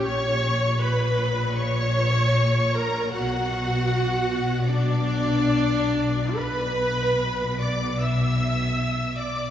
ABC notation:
X:1
M:4/4
L:1/8
Q:1/4=76
K:Edor
V:1 name="Violin section"
c'2 b2 c'3 ^a | f4 d4 | b3 d' e'3 d' |]
V:2 name="Violin section"
c'2 b2 c'3 ^a | f4 d4 | b3 d' e'3 d' |]
V:3 name="Viola section"
c2 B2 c3 ^A | F4 D4 | B3 d e3 d |]
V:4 name="Cello section" clef=bass
^A,,8 | B,,8 | B,,8 |]
V:5 name="Double bass section" clef=bass
^A,,,8 | B,,,8 | B,,,8 |]